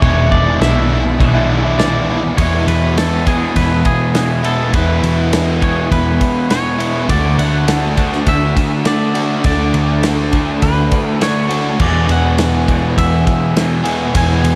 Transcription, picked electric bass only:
0.02 0.57 E1 loud
0.61 1.16 B1 loud
1.20 2.34 B1 medium
2.39 2.65 E2 medium
2.67 3.52 E2 medium
3.56 3.82 E2 medium
4.74 5.00 E2 medium
5.03 5.87 E2 medium
5.92 6.18 E2 medium
7.09 7.36 D2 medium
7.38 8.23 D2 medium
8.27 8.53 D2 loud
9.45 9.71 D2 medium
9.74 10.58 D2 medium
10.63 10.89 D2 medium
11.80 12.07 E2 medium
12.09 12.94 E2 medium
12.97 13.24 E2 medium
14.15 14.42 E2 loud
14.44 14.55 E2 medium

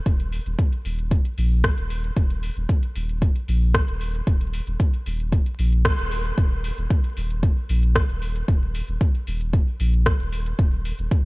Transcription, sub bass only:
0.06 0.39 D#1 loud
0.46 0.55 D#1 medium
0.85 1.18 D#1 medium
1.38 1.71 A#1 medium
1.78 2.10 D#1 medium
2.17 2.50 D#1 loud
2.57 2.65 D#1 medium
2.96 3.29 D#1 medium
3.48 3.81 A#1 medium
3.88 4.21 D#1 medium
4.27 4.60 D#1 loud
4.67 4.76 D#1 loud
5.06 5.39 D#1 medium
5.59 5.92 A#1 medium
5.99 6.31 D#1 loud
6.38 6.71 D#1 loud
6.78 6.86 D#1 medium
7.17 7.50 D#1 medium
7.69 8.02 A#1 medium
8.09 8.42 D#1 medium
8.48 8.81 D#1 loud
8.88 8.97 D#1 medium
9.27 9.60 D#1 medium
9.80 10.13 A#1 medium
10.20 10.52 D#1 medium
10.59 10.92 D#1 loud
10.99 11.07 D#1 medium

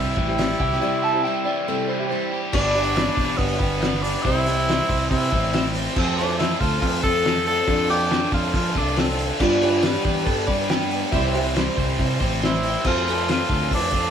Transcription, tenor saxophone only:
0.00 2.06 E4 loud
2.54 3.39 D4 loud
3.37 4.04 B3 loud
4.02 4.24 D4 loud
4.22 5.09 E4 loud
5.10 5.71 E4 loud
5.97 6.19 C4 loud
6.18 6.38 D4 loud
6.38 6.59 E4 medium
6.60 6.81 F4 loud
6.81 7.02 F4 loud
7.03 7.44 A4 loud
7.47 7.87 A4 loud
7.90 8.30 G4 loud
8.34 8.54 F4 loud
8.56 8.79 F4 loud
8.78 9.00 D4 loud
8.98 9.30 C4 medium
12.44 12.88 E4 loud
12.87 13.29 F4 loud
13.31 13.70 F4 loud
13.74 14.10 D4 loud

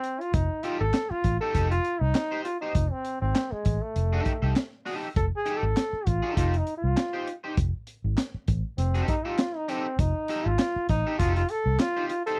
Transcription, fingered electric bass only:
0.34 0.47 F1 loud
0.81 0.91 G#1 medium
1.11 muted fingered electric bass stroke soft
1.24 1.37 A1 medium
1.55 1.78 F1 loud
2.01 2.12 C2 loud
2.75 2.88 F1 loud
3.22 3.32 G#1 medium
3.52 muted fingered electric bass stroke soft
3.66 3.79 A1 medium
3.96 4.19 F1 loud
4.42 4.53 C2 medium
5.16 5.29 F1 loud
5.63 5.73 G#1 medium
5.93 muted fingered electric bass stroke soft
6.07 6.20 A1 medium
6.37 6.60 F1 loud
6.84 6.94 C2 medium
7.57 7.70 F1 medium
8.04 8.15 G#1 medium
8.34 muted fingered electric bass stroke soft
8.48 8.61 A1 medium
8.78 9.01 F1 loud
9.99 10.12 F1 loud
10.46 10.56 G#1 medium
10.76 muted fingered electric bass stroke soft
10.89 11.02 A1 medium
11.19 11.42 F1 loud
11.66 11.76 C2 medium

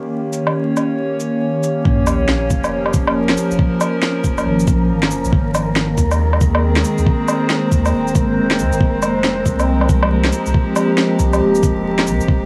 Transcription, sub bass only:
1.85 2.49 A#1 loud
2.50 3.36 F1 medium
3.51 3.58 F1 medium
4.24 4.45 F1 loud
4.46 4.69 G#1 medium
4.68 4.91 A#1 loud
4.89 5.13 G#1 medium
5.11 5.24 F1 medium
5.25 5.32 A#1 medium
5.33 5.97 G#1 loud
5.98 6.84 D#2 loud
6.98 7.06 D#2 medium
7.72 7.92 D#2 medium
7.94 8.17 D#1 medium
8.15 8.39 G#1 loud
8.37 8.61 D#1 medium
8.59 8.72 D#2 medium
8.73 8.80 G#1 medium
8.81 9.45 F1 loud
9.46 10.32 C2 medium
10.47 10.54 C2 medium
11.20 11.40 C2 medium
11.42 11.65 D#1 medium
11.63 11.87 F1 loud
11.85 12.08 D#1 medium
12.07 12.19 C2 loud
12.21 12.28 F1 medium
12.28 12.46 D#1 loud

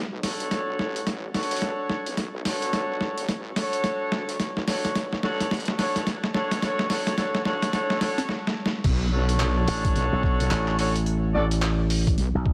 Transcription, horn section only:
0.23 1.05 D4 medium
0.23 1.05 F#4 medium
0.23 1.05 A4 medium
0.23 1.05 C#5 medium
1.34 2.16 D4 medium
1.34 2.16 F#4 medium
1.34 2.16 A4 medium
1.34 2.16 C#5 medium
2.45 3.27 D4 medium
2.45 3.27 F#4 medium
2.45 3.27 A4 medium
2.45 3.27 C#5 medium
3.56 4.38 D4 medium
3.56 4.38 F#4 medium
3.56 4.38 A4 medium
3.56 4.38 C#5 loud
4.68 4.94 D4 medium
4.68 4.94 F#4 medium
4.68 4.94 A4 medium
4.68 4.94 C#5 loud
5.23 5.49 D4 medium
5.23 5.49 F#4 medium
5.23 5.49 A4 medium
5.23 5.49 C#5 loud
5.79 6.05 D4 medium
5.79 6.05 F#4 medium
5.79 6.05 A4 medium
5.79 6.05 C#5 loud
6.34 6.60 D4 medium
6.34 6.60 F#4 medium
6.34 6.60 A4 medium
6.34 6.60 C#5 loud
6.62 6.88 D4 medium
6.62 6.88 F#4 medium
6.62 6.88 A4 medium
6.62 6.88 C#5 loud
6.90 7.16 D4 medium
6.90 7.16 F#4 medium
6.90 7.16 A4 medium
6.90 7.16 C#5 loud
7.18 7.44 D4 medium
7.18 7.44 F#4 medium
7.18 7.44 A4 medium
7.18 7.44 C#5 loud
7.45 7.71 D4 medium
7.45 7.71 F#4 medium
7.45 7.71 A4 medium
7.45 7.71 C#5 loud
7.73 7.99 D4 medium
7.73 7.99 F#4 medium
7.73 7.99 A4 medium
7.73 7.99 C#5 loud
8.01 8.27 D4 medium
8.01 8.27 F#4 medium
8.01 8.27 A4 medium
8.01 8.27 C#5 loud
9.12 10.76 D4 loud
9.12 10.76 F#4 medium
9.12 10.76 A4 medium
9.12 10.76 C#5 loud
10.79 10.94 D4 loud
10.79 10.94 F#4 medium
10.79 10.94 A4 medium
10.79 10.94 C#5 loud
11.34 11.44 D4 medium
11.34 11.44 F#4 medium
11.34 11.44 A4 medium
11.34 11.44 D5 loud

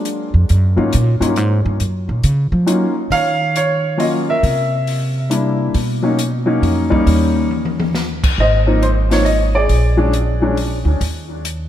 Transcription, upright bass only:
0.34 0.48 F2 medium
0.50 0.77 F#2 medium
0.78 0.92 G#2 medium
0.94 1.20 A#2 medium
1.21 1.37 G2 medium
1.37 1.65 G#2 medium
1.66 1.79 G2 loud
1.80 2.08 F#2 medium
2.09 2.23 A#2 medium
2.24 2.51 C#3 medium
2.52 2.69 F3 medium
2.69 2.86 F#3 medium
3.10 4.38 D#3 medium
4.43 5.70 C3 medium
5.75 6.58 B2 medium
6.62 7.03 F2 medium
7.06 8.33 D#2 medium
8.38 9.65 G#1 medium
9.69 10.82 A#1 medium
10.85 10.99 D2 medium
11.01 11.69 D#2 medium

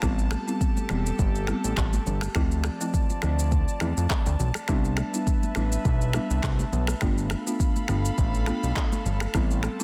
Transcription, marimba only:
0.02 0.44 G3 medium
0.02 0.44 B3 medium
0.02 0.44 C4 medium
0.02 0.44 E4 loud
0.47 0.65 G3 medium
0.47 0.65 B3 medium
0.47 0.65 C4 medium
0.47 0.65 E4 medium
0.90 1.09 G3 medium
0.90 1.09 B3 medium
0.90 1.09 C4 medium
0.90 1.09 E4 medium
1.48 1.67 G3 medium
1.48 1.67 B3 medium
1.48 1.67 C4 medium
1.48 1.68 E4 medium
2.35 2.77 F3 medium
2.35 2.77 A3 medium
2.35 2.77 C4 medium
2.35 2.77 E4 loud
2.81 2.98 F3 medium
2.81 2.98 A3 medium
2.81 2.98 C4 medium
2.81 2.98 E4 medium
3.23 3.42 F3 medium
3.23 3.42 A3 medium
3.23 3.42 C4 medium
3.23 3.42 E4 medium
3.81 4.00 F3 medium
3.81 4.00 A3 medium
3.81 4.00 C4 medium
3.81 4.01 E4 medium
4.68 5.10 G3 medium
4.68 5.10 B3 medium
4.68 5.10 D4 medium
4.68 5.10 E4 loud
5.13 5.31 G3 medium
5.13 5.31 B3 medium
5.13 5.31 D4 medium
5.13 5.31 E4 medium
5.56 5.75 G3 medium
5.56 5.75 B3 medium
5.56 5.75 D4 medium
5.56 5.75 E4 medium
6.14 6.33 G3 medium
6.14 6.33 B3 medium
6.14 6.33 D4 medium
6.14 6.34 E4 medium
7.01 7.43 A3 medium
7.01 7.43 B3 medium
7.01 7.43 D4 medium
7.01 7.43 F4 loud
7.47 7.64 A3 medium
7.47 7.64 B3 medium
7.47 7.64 D4 medium
7.47 7.64 F4 medium
7.89 8.08 A3 medium
7.89 8.08 B3 medium
7.89 8.08 D4 medium
7.89 8.08 F4 medium
8.47 8.66 A3 medium
8.47 8.66 B3 medium
8.47 8.67 D4 medium
8.47 8.67 F4 medium
9.34 9.76 G3 medium
9.34 9.76 B3 medium
9.34 9.76 C4 medium
9.34 9.76 E4 loud
9.79 9.84 G3 medium
9.79 9.84 B3 medium
9.79 9.84 C4 medium
9.79 9.84 E4 medium

